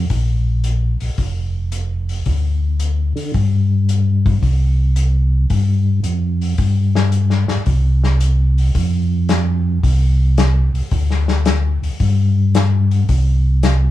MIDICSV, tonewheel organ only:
0, 0, Header, 1, 2, 480
1, 0, Start_track
1, 0, Tempo, 541028
1, 83, Time_signature, 4, 2, 24, 8
1, 12339, End_track
2, 0, Start_track
2, 0, Title_t, "Tonewheel organ"
2, 0, Program_c, 0, 16
2, 84, Note_on_c, 0, 34, 73
2, 859, Note_off_c, 0, 34, 0
2, 902, Note_on_c, 0, 34, 37
2, 974, Note_off_c, 0, 34, 0
2, 1047, Note_on_c, 0, 29, 88
2, 1968, Note_off_c, 0, 29, 0
2, 2006, Note_on_c, 0, 38, 74
2, 2779, Note_off_c, 0, 38, 0
2, 2800, Note_on_c, 0, 50, 65
2, 2944, Note_off_c, 0, 50, 0
2, 2963, Note_on_c, 0, 43, 84
2, 3886, Note_off_c, 0, 43, 0
2, 3924, Note_on_c, 0, 36, 77
2, 4846, Note_off_c, 0, 36, 0
2, 4877, Note_on_c, 0, 43, 86
2, 5325, Note_off_c, 0, 43, 0
2, 5353, Note_on_c, 0, 41, 65
2, 5802, Note_off_c, 0, 41, 0
2, 5840, Note_on_c, 0, 43, 80
2, 6615, Note_off_c, 0, 43, 0
2, 6650, Note_on_c, 0, 43, 40
2, 6725, Note_off_c, 0, 43, 0
2, 6801, Note_on_c, 0, 36, 84
2, 7725, Note_off_c, 0, 36, 0
2, 7762, Note_on_c, 0, 41, 80
2, 8685, Note_off_c, 0, 41, 0
2, 8722, Note_on_c, 0, 36, 87
2, 9497, Note_off_c, 0, 36, 0
2, 9519, Note_on_c, 0, 36, 35
2, 9596, Note_off_c, 0, 36, 0
2, 9679, Note_on_c, 0, 38, 82
2, 10455, Note_off_c, 0, 38, 0
2, 10488, Note_on_c, 0, 38, 43
2, 10563, Note_off_c, 0, 38, 0
2, 10646, Note_on_c, 0, 43, 93
2, 11568, Note_off_c, 0, 43, 0
2, 11612, Note_on_c, 0, 36, 75
2, 12339, Note_off_c, 0, 36, 0
2, 12339, End_track
0, 0, End_of_file